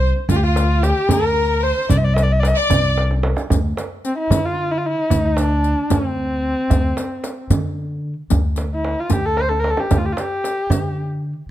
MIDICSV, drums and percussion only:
0, 0, Header, 1, 3, 480
1, 0, Start_track
1, 0, Tempo, 534283
1, 268, Time_signature, 6, 3, 24, 8
1, 10334, End_track
2, 0, Start_track
2, 0, Title_t, "Riq"
2, 265, Note_on_c, 9, 54, 55
2, 355, Note_off_c, 9, 54, 0
2, 511, Note_on_c, 9, 54, 45
2, 601, Note_off_c, 9, 54, 0
2, 752, Note_on_c, 9, 54, 40
2, 842, Note_off_c, 9, 54, 0
2, 994, Note_on_c, 9, 54, 72
2, 1084, Note_off_c, 9, 54, 0
2, 1711, Note_on_c, 9, 54, 71
2, 1800, Note_off_c, 9, 54, 0
2, 1956, Note_on_c, 9, 54, 45
2, 2046, Note_off_c, 9, 54, 0
2, 2198, Note_on_c, 9, 54, 43
2, 2288, Note_off_c, 9, 54, 0
2, 2431, Note_on_c, 9, 54, 68
2, 2521, Note_off_c, 9, 54, 0
2, 3034, Note_on_c, 9, 54, 17
2, 3124, Note_off_c, 9, 54, 0
2, 3159, Note_on_c, 9, 54, 61
2, 3249, Note_off_c, 9, 54, 0
2, 3399, Note_on_c, 9, 54, 43
2, 3489, Note_off_c, 9, 54, 0
2, 3636, Note_on_c, 9, 54, 42
2, 3726, Note_off_c, 9, 54, 0
2, 3878, Note_on_c, 9, 54, 66
2, 3968, Note_off_c, 9, 54, 0
2, 4593, Note_on_c, 9, 54, 62
2, 4683, Note_off_c, 9, 54, 0
2, 4831, Note_on_c, 9, 54, 43
2, 4921, Note_off_c, 9, 54, 0
2, 5069, Note_on_c, 9, 54, 39
2, 5158, Note_off_c, 9, 54, 0
2, 5303, Note_on_c, 9, 54, 69
2, 5393, Note_off_c, 9, 54, 0
2, 6028, Note_on_c, 9, 54, 62
2, 6117, Note_off_c, 9, 54, 0
2, 6267, Note_on_c, 9, 54, 43
2, 6357, Note_off_c, 9, 54, 0
2, 6503, Note_on_c, 9, 54, 43
2, 6593, Note_off_c, 9, 54, 0
2, 6743, Note_on_c, 9, 54, 68
2, 6833, Note_off_c, 9, 54, 0
2, 7459, Note_on_c, 9, 54, 65
2, 7549, Note_off_c, 9, 54, 0
2, 7691, Note_on_c, 9, 54, 44
2, 7781, Note_off_c, 9, 54, 0
2, 8172, Note_on_c, 9, 54, 69
2, 8262, Note_off_c, 9, 54, 0
2, 8900, Note_on_c, 9, 54, 59
2, 8990, Note_off_c, 9, 54, 0
2, 9146, Note_on_c, 9, 54, 39
2, 9236, Note_off_c, 9, 54, 0
2, 9387, Note_on_c, 9, 54, 46
2, 9477, Note_off_c, 9, 54, 0
2, 9626, Note_on_c, 9, 54, 60
2, 9716, Note_off_c, 9, 54, 0
2, 10334, End_track
3, 0, Start_track
3, 0, Title_t, "Tombak"
3, 144, Note_on_c, 9, 62, 26
3, 234, Note_off_c, 9, 62, 0
3, 259, Note_on_c, 9, 64, 79
3, 348, Note_off_c, 9, 64, 0
3, 503, Note_on_c, 9, 63, 68
3, 593, Note_off_c, 9, 63, 0
3, 746, Note_on_c, 9, 63, 62
3, 836, Note_off_c, 9, 63, 0
3, 978, Note_on_c, 9, 64, 96
3, 1068, Note_off_c, 9, 64, 0
3, 1592, Note_on_c, 9, 62, 25
3, 1682, Note_off_c, 9, 62, 0
3, 1704, Note_on_c, 9, 64, 87
3, 1794, Note_off_c, 9, 64, 0
3, 1945, Note_on_c, 9, 63, 72
3, 2035, Note_off_c, 9, 63, 0
3, 2185, Note_on_c, 9, 63, 72
3, 2275, Note_off_c, 9, 63, 0
3, 2427, Note_on_c, 9, 64, 89
3, 2516, Note_off_c, 9, 64, 0
3, 2673, Note_on_c, 9, 63, 58
3, 2763, Note_off_c, 9, 63, 0
3, 2792, Note_on_c, 9, 62, 55
3, 2882, Note_off_c, 9, 62, 0
3, 2905, Note_on_c, 9, 63, 77
3, 2995, Note_off_c, 9, 63, 0
3, 3024, Note_on_c, 9, 62, 86
3, 3114, Note_off_c, 9, 62, 0
3, 3147, Note_on_c, 9, 64, 102
3, 3237, Note_off_c, 9, 64, 0
3, 3390, Note_on_c, 9, 63, 70
3, 3480, Note_off_c, 9, 63, 0
3, 3870, Note_on_c, 9, 64, 99
3, 3959, Note_off_c, 9, 64, 0
3, 4585, Note_on_c, 9, 64, 93
3, 4675, Note_off_c, 9, 64, 0
3, 4821, Note_on_c, 9, 63, 78
3, 4911, Note_off_c, 9, 63, 0
3, 5311, Note_on_c, 9, 64, 93
3, 5401, Note_off_c, 9, 64, 0
3, 6021, Note_on_c, 9, 64, 84
3, 6111, Note_off_c, 9, 64, 0
3, 6262, Note_on_c, 9, 63, 72
3, 6352, Note_off_c, 9, 63, 0
3, 6501, Note_on_c, 9, 63, 64
3, 6591, Note_off_c, 9, 63, 0
3, 6744, Note_on_c, 9, 64, 101
3, 6834, Note_off_c, 9, 64, 0
3, 7467, Note_on_c, 9, 64, 78
3, 7557, Note_off_c, 9, 64, 0
3, 7705, Note_on_c, 9, 63, 63
3, 7795, Note_off_c, 9, 63, 0
3, 7947, Note_on_c, 9, 63, 61
3, 8036, Note_off_c, 9, 63, 0
3, 8179, Note_on_c, 9, 64, 86
3, 8268, Note_off_c, 9, 64, 0
3, 8417, Note_on_c, 9, 63, 57
3, 8507, Note_off_c, 9, 63, 0
3, 8544, Note_on_c, 9, 62, 47
3, 8634, Note_off_c, 9, 62, 0
3, 8663, Note_on_c, 9, 63, 68
3, 8752, Note_off_c, 9, 63, 0
3, 8779, Note_on_c, 9, 62, 83
3, 8869, Note_off_c, 9, 62, 0
3, 8902, Note_on_c, 9, 64, 96
3, 8992, Note_off_c, 9, 64, 0
3, 9137, Note_on_c, 9, 63, 72
3, 9227, Note_off_c, 9, 63, 0
3, 9381, Note_on_c, 9, 63, 63
3, 9471, Note_off_c, 9, 63, 0
3, 9616, Note_on_c, 9, 64, 94
3, 9706, Note_off_c, 9, 64, 0
3, 10334, End_track
0, 0, End_of_file